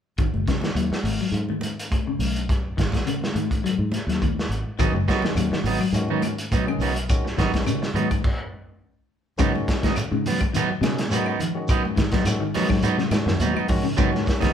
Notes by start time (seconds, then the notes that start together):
0.18 G#1 D#3, kick, closed hi-hat
0.34 F#1, high conga
0.48 C#3, kick, snare, closed hi-hat
0.61 D#3, muted fingered electric bass stroke, snare, high conga
0.75 D#2 F#3, closed hi-hat
0.90 muted fingered electric bass stroke, muted clean electric guitar stroke, snare, high conga
1.03 G#1, open hi-hat, high conga
1.21 F#3
1.32 G#2, closed hi-hat
1.49 D#3, high conga
1.61 closed hi-hat, high conga
1.79 closed hi-hat
1.91 kick, closed hi-hat, high conga
2.07 C#3
2.19 B1, open hi-hat, high conga
2.36 closed hi-hat
2.49 kick, snare, closed hi-hat
2.77 G#1 D#3, kick, snare, closed hi-hat
2.92 kick, snare, closed hi-hat, high conga
3.06 C#3, closed hi-hat
3.21 snare, high conga
3.34 G#2 D#3, closed hi-hat, high conga
3.51 kick, closed hi-hat
3.64 F#3, closed hi-hat
3.79 G#2
3.92 snare, closed hi-hat, high conga
4.07 D#2 F#3, snare, closed hi-hat
4.20 D#3, kick, closed hi-hat, high conga
4.39 snare
4.49 G#1, closed hi-hat
4.79 G#1 D#3 F#3 G#3 B3 C#4 D#4 F#4, kick, closed hi-hat, claves, shekere
4.93 F#1, muted clean electric guitar stroke, high conga
5.08 D#3 F#3 G#3 B3 C#4 D#4 F#4, kick, snare, closed hi-hat, shekere
5.22 D#3, muted fingered electric bass stroke, muted clean electric guitar stroke, snare, high conga
5.35 D#2 F#3, closed hi-hat, claves, shekere
5.50 D#3, muted fingered electric bass stroke, muted clean electric guitar stroke, snare, high conga
5.64 G#1 F#3 B3 D#4, open hi-hat, high conga, shekere
5.81 F#3, muted clean electric guitar stroke, claves
5.92 G#2 D#3 G#3 C#4 F#4, muted clean electric guitar stroke, closed hi-hat, shekere
6.08 D#3 F#3 B3 D#4, high conga
6.22 closed hi-hat, high conga, claves, shekere
6.38 closed hi-hat
6.51 F#3 B3 D#4, kick, closed hi-hat, high conga, shekere
6.66 C#3 D#3 G#3 C#4 G#4, muted clean electric guitar stroke, claves
6.79 B1 F#3 B3, open hi-hat, shekere
6.83 D#4
6.96 muted clean electric guitar stroke, closed hi-hat
7.08 D#3 G#3 C#4 F#4, kick, closed hi-hat, claves, shekere
7.25 muted clean electric guitar stroke, snare
7.37 G#1 D#3 F#3 G#3 B3 C#4 D#4 F#4, kick, snare, closed hi-hat, shekere
7.54 muted clean electric guitar stroke, kick, snare, closed hi-hat, high conga
7.66 C#3, closed hi-hat, claves, shekere
7.82 muted clean electric guitar stroke, snare
7.94 G#2 D#3 F#3 B3 D#4, closed hi-hat, high conga, shekere
8.11 muted clean electric guitar stroke, kick, closed hi-hat, claves
8.24 kick, crash
9.38 G#2 C#3 D#3 F#3 G#3 B3 C#4 D#4 F#4, kick, closed hi-hat, claves, shekere
9.55 muted clean electric guitar stroke, high conga
9.68 muted clean electric guitar stroke, kick, snare, closed hi-hat, shekere
9.82 D#3 B3 D#4, kick, snare, closed hi-hat, high conga
9.96 muted clean electric guitar stroke, closed hi-hat, claves, shekere
10.11 G#2 C#3, high conga
10.26 F#3 B3, open hi-hat, high conga, low conga, shekere
10.41 muted clean electric guitar stroke, kick, closed hi-hat, claves
10.53 D#3 F#3 B3 D#4, closed hi-hat, shekere
10.71 muted clean electric guitar stroke
10.81 B2 C#3 D#3 G#3 C#4 G#4, muted clean electric guitar stroke, snare, closed hi-hat, high conga, claves, shekere
10.98 snare, closed hi-hat
11.10 G#2 D#3 F#3 G#3 B3 C#4 D#4 F#4, closed hi-hat, high conga, shekere
11.26 B3 D#4, claves
11.40 D#3, muted clean electric guitar stroke, closed hi-hat, low conga, shekere
11.55 D#3 G#3 C#4 F#4, muted clean electric guitar stroke
11.68 F#3 B3 D#4, kick, closed hi-hat, claves, shekere
11.85 muted clean electric guitar stroke, high conga
11.96 G#2 D#3, muted clean electric guitar stroke, kick, snare, closed hi-hat, shekere
12.12 F#3 B3 D#4, kick, snare, closed hi-hat, high conga, low conga
12.25 G#2 D#3 G#3 C#4 F#4, muted clean electric guitar stroke, snare, closed hi-hat, claves, shekere
12.40 D#3
12.54 D#3 F#3 G#3 B3 C#4 D#4 F#4, snare, open hi-hat, high conga, low conga, shekere
12.69 G#2 F#3, muted clean electric guitar stroke, kick, snare, claves
12.82 G#2 F#3 B3 D#4, closed hi-hat, shekere
12.98 C#3, muted clean electric guitar stroke, snare, high conga
13.11 G#2 D#3 G#3 C#4 F#4, muted clean electric guitar stroke, snare, closed hi-hat, high conga, claves, shekere
13.26 F#2 D#3, snare
13.40 D#2 F#3 B3 D#4, closed hi-hat, high conga, shekere
13.54 F#3 B3 D#4, claves
13.68 G#2 D#3 G#3 C#4 F#4, muted clean electric guitar stroke, kick, open hi-hat, low conga, shekere
13.83 C#3, muted clean electric guitar stroke
13.97 G#2 C#3 D#3 F#3 G#3 B3 C#4 D#4 F#4, kick, closed hi-hat, claves, shekere
14.12 muted clean electric guitar stroke, snare, high conga
14.26 muted clean electric guitar stroke, kick, snare, closed hi-hat, shekere
14.40 D#3 B3 D#4, kick, snare, closed hi-hat, high conga, low conga